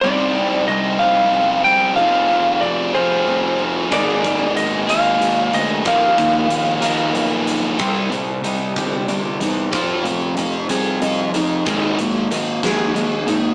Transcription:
<<
  \new Staff \with { instrumentName = "Lead electric guitar" } { \time 6/8 \key c \minor \tempo 4. = 62 d''4 ees''8 f''4 g''8 | f''4 d''8 c''4 r8 | d''4 ees''8 f''4 ees''8 | f''2~ f''8 r8 |
r2. | r2. | r2. | }
  \new Staff \with { instrumentName = "Distorted electric guitar" } { \time 6/8 \key c \minor <c g c' ees' g'>4. <c g c' ees' g'>4. | <f c' f' aes'>4. <f c' f' aes'>4. | <aes bes ees' aes'>4. <aes bes ees' aes'>4. | <ees f bes ees' bes'>4. <ees f bes ees' bes'>4. |
<c g c'>8 <c g>8 <c g>8 <c g>8 <c g>8 <c g>8 | <f c' f'>8 <f c'>8 <f c'>8 <f c'>8 <f c'>8 <f c'>8 | <aes bes ees'>8 <aes bes>8 <aes bes>8 <aes bes>8 <aes bes>8 <aes bes>8 | }
  \new Staff \with { instrumentName = "Steel-string acoustic guitar" } { \clef bass \time 6/8 \key c \minor <c g c'>8 <c g>8 <c g>8 <c g>8 <c g>8 <c g>8 | <f c' ees'>8 <f c'>8 <f c'>8 <f c'>8 <f c'>8 <f c'>8 | <aes bes ees'>8 <aes bes>8 <aes bes>8 <aes bes>8 <aes bes>8 aes8 | <ees f bes>8 <ees f>8 f8 <ees f>8 f8 <ees f>8 |
c4 ees'8 g'8 d''8 ees'8 | f4 ees'8 aes'8 ees''8 ees'8 | aes4 ees'8 aes'8 ees''8 ees'8 | }
  \new Staff \with { instrumentName = "Picked electric bass" } { \clef bass \time 6/8 \key c \minor c,4 c,8 c,8 c,8 c,8 | f,,8 f,,8 f,,8 f,,8 f,,4 | aes,,4 aes,,8 aes,,8 aes,,8 d,8 | ees,8 ees,8 ees,8 ees,8 b,,4 |
c,8 c,8 c,8 g,,8 g,,8 e,8 | f,,8 f,,8 f,,8 c,8 c,8 f,,8 | aes,,8 aes,,8 aes,,8 ees,8 ees,8 aes,,8 | }
  \new DrumStaff \with { instrumentName = "Drums" } \drummode { \time 6/8 r4. r4. | r4. r4. | <hh bd>8 <hh bd>8 hh8 hh8 hh8 hh8 | <hh bd>8 <hh bd>8 hh8 hh8 hh8 hh8 |
<hh bd>8 hh8 hh8 <hh bd>8 hh8 hh8 | <hh bd>8 hh8 hh8 hh8 hh8 hh8 | <hh bd>8 hh8 hh8 <hh bd sn>8 hh8 hh8 | }
>>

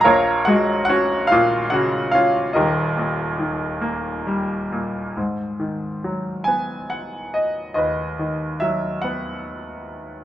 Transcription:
<<
  \new Staff \with { instrumentName = "Grand piano" } { \time 6/8 \key bes \phrygian \tempo 4. = 47 << { bes''8 ges''8 ges''8 f''8 ges''8 f''8 | ees''2~ ees''8 r8 | \key gis \minor r4. gis''8 fis''8 dis''8 | dis''4 e''8 fis''4 r8 | } \\ { <bes' des'' f''>8 ges'8 ges'8 f'8 ges'8 f'8 | <ees' g' bes'>2~ <ees' g' bes'>8 r8 | r2. | b'4. r4. | } >> }
  \new Staff \with { instrumentName = "Grand piano" } { \clef bass \time 6/8 \key bes \phrygian <bes,, bes,>8 aes8 des'8 bes,8 des8 des'8 | <ees,, ees,>8 bes,8 ees8 bes8 g8 bes,8 | \key gis \minor gis,8 dis8 fis8 b4. | dis,8 dis8 fis8 b4. | }
>>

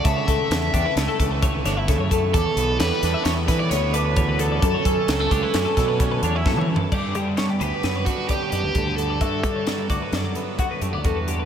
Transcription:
<<
  \new Staff \with { instrumentName = "Clean electric guitar" } { \time 5/4 \key g \lydian \tempo 4 = 131 a'16 cis''16 a'8 b'16 a'16 g'16 b'16 cis''16 a'16 a'16 b'16 cis''16 b'16 cis''16 e''16 a'16 cis''16 a'8 | d''16 cis''16 b'16 a'16 cis''16 b'8 e''8 d''16 b'16 cis''16 b'16 a'16 d''16 b'16 cis''16 b'16 a'16 d''16 | a'16 cis''16 a'8 b'16 a'16 g'16 b'16 cis''16 a'16 a'16 b'16 cis''16 b'16 cis''16 e''16 a'16 cis''16 a'8 | d''8 g'16 b'16 d''16 g'16 b'16 d''16 b'16 cis''16 b'8 d''16 cis''16 d''16 b'16 a'16 b'16 g'16 d''16 |
e''8 d''16 cis''16 d''16 b'16 d''16 b'16 d''16 d''16 b'8 fis'16 b'16 g'16 d''16 a'16 b'16 g'16 b'16 | }
  \new Staff \with { instrumentName = "Overdriven electric guitar" } { \time 5/4 \key g \lydian e''2 r2. | a'4 b'4 cis''8 b'16 d''16 cis''8 b'4 a'8~ | a'1 r4 | r4 cis''8 b'4 fis'8 g'8 g'4 a'8~ |
a'4. r2. r8 | }
  \new Staff \with { instrumentName = "Clean electric guitar" } { \time 5/4 \key g \lydian << { a8 a4 d'16 e'16 a4 a8 d'16 e'8. a8 | r8 b8 g8 d'8 b4 b8 d'4 b8 | r8 cis'8 fis16 a16 d'16 e'16 cis'4 cis'8 d'16 e'4~ e'16 | g'4 b8 g'8 b8 d'8 d'8 d'8 d'4 |
fis'4 fis8 fis'8 fis8 b8 fis'8 a16 b16 fis'4 | } \\ { cis2~ cis8 e4. cis4 | e,2~ e,8 e4. e,4 | fis,2~ fis,8 fis4. e,8 fis,8 | g,8 d2.~ d8 g,8 d8 |
g,8 d2.~ d8 g,8 d8 | } >> }
  \new Staff \with { instrumentName = "Fingered electric bass" } { \clef bass \time 5/4 \key g \lydian cis,16 r16 cis,16 r16 e,8 e,16 r16 cis,16 r16 cis,4 g,,8 cis,16 fis,8. | e,16 r16 b,,8 e,16 r16 e,16 r16 e,8 e8 d,2 | fis,16 r16 fis,16 r16 cis,8 cis,16 r16 fis,16 r16 b,4 e,8 fis,16 e8 r16 | g,8 g4 d,16 r16 fis,8 r4 fis,16 d,16 d,4 |
g,8 g4 d,16 r16 fis,8 r4 fis,16 d,16 e,4 | }
  \new DrumStaff \with { instrumentName = "Drums" } \drummode { \time 5/4 <hh bd>8 <hh bd>8 <hh sn>8 <hh bd>8 <hh sn>8 <hh bd>8 <hh bd>8 <hh sn>8 <hh bd sn>8 <hh bd>8 | <hh bd>8 hh8 <hh sn>8 <hh sn>8 <hh sn>8 <hh bd sn>8 <hh sn>8 hh8 <hh bd>8 hh8 | <hh bd>8 <hh bd>8 <hh sn>8 <hh bd>8 <hh sn>8 <hh bd sn>8 <hh bd>8 hh8 \tuplet 3/2 { <bd sn>8 toml8 tomfh8 } | <cymc bd>8 hh8 <hh sn>8 hh8 <hh sn>8 <hh bd>8 <hh bd>8 hh8 <hh bd>8 hh8 |
<hh bd>8 <hh bd>8 <hh sn>8 <hh bd>8 <hh sn>8 hh8 <hh bd>8 hh8 <hh bd>8 hh8 | }
>>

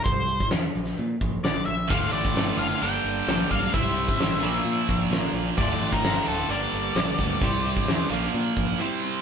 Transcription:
<<
  \new Staff \with { instrumentName = "Lead electric guitar" } { \time 4/4 \key bes \lydian \tempo 4 = 130 c''4 r2 d''8 e''8 | f''8 d''4 f''8 g''4. f''8 | e''2.~ e''8 r8 | d''8. bes'8. a'8 d''2~ |
d''2. r4 | }
  \new Staff \with { instrumentName = "Clean electric guitar" } { \time 4/4 \key bes \lydian r1 | <d, a, d a f'>8 <d a f'>8 <a, d a f'>8 <d a f'>8 <g, d g bes d' g'>4 <g, d g bes d' g'>8 <g bes d' g'>8 | <c g c' e' g' c''>8 <c' e' g' c''>8 <c' e' g' c''>8 <bes, f bes d' f' bes'>4. <bes, f bes d' f' bes'>8 <bes d' f' bes'>8 | <d, a, d a f'>8 <d f'>8 <a, d a f'>8 <d a f'>8 <g, d g bes d' g'>4 <g, d g bes d' g'>8 <g bes d' g'>8 |
<c g c' e' g' c''>8 <c' e' g' c''>8 <c' e' g' c''>8 <bes, f bes d' f' bes'>4. <c g c' e' g' c''>8 <c' e' g' c''>8 | }
  \new Staff \with { instrumentName = "Distorted electric guitar" } { \clef bass \time 4/4 \key bes \lydian r1 | <d, a, d>2 <g, d g>2 | <c g c'>4. <bes, f bes>2~ <bes, f bes>8 | <d, a, d>2 <g, d g>2 |
<c g c'>4. <bes, f bes>4. <c g c'>4 | }
  \new Staff \with { instrumentName = "Picked electric bass" } { \clef bass \time 4/4 \key bes \lydian c,4 e,8 bes,,8 bes,8 bes,,8 bes,,8 bes,,8 | d,,8 a,,8 g,,8 fis,,8 g,,8 g,,8 bes,,8 b,,8 | c,4 a,,8 bes,,8 bes,8 bes,,8 bes,,8 bes,,8 | d,,8 a,,8 g,,8 d,,8 g,,8 g,,8 bes,,8 d,8 |
c,4 e,8 bes,,8 bes,8 bes,,8 r4 | }
  \new DrumStaff \with { instrumentName = "Drums" } \drummode { \time 4/4 <hh bd>8 hh16 <hh bd>16 <hh sn>8 hh16 <hh sn>16 hh8 <hh bd>8 <hh sn>8 hh8 | <hh bd>8 hh16 <hh bd>16 <hh sn>8 hh16 hh16 hh8 hh8 <hh sn>8 <hh bd>8 | <hh bd>8 hh16 <hh bd>16 <hh sn>8 hh16 hh16 hh8 <hh bd>8 <hh sn>8 hh8 | <hh bd>8 hh16 <hh bd>16 <hh sn>8 hh16 hh16 hh8 hh8 <hh sn>8 <hh bd>8 |
<hh bd>8 hh16 <hh bd>16 <hh sn>8 hh16 <hh sn>16 hh8 <hh bd>8 r4 | }
>>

